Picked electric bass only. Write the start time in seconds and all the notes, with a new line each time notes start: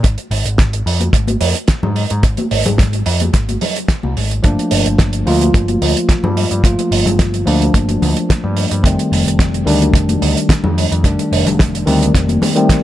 0.04 G#1
0.31 G#1
0.45 G#1
0.86 F2
1.13 G#1
1.41 F2
1.83 G#2
2.11 G#2
2.23 G#1
2.52 G#1
2.66 G#1
3.06 F2
3.34 G#1
4.04 C2
4.17 G#1
4.44 G1
4.72 G1
4.86 G1
5.27 D2
5.54 G1
5.82 D2
6.24 G2
6.51 G2
6.64 G1
6.91 G1
7.06 G1
7.47 D2
7.74 G1
8.02 D2
8.44 G2
8.71 G2
8.84 F1
9.12 F1
9.26 F1
9.67 D2
9.93 F1
10.22 D2
10.64 F2
10.91 F2
11.04 F1
11.32 F1
11.46 F1
11.87 D2
12.15 F1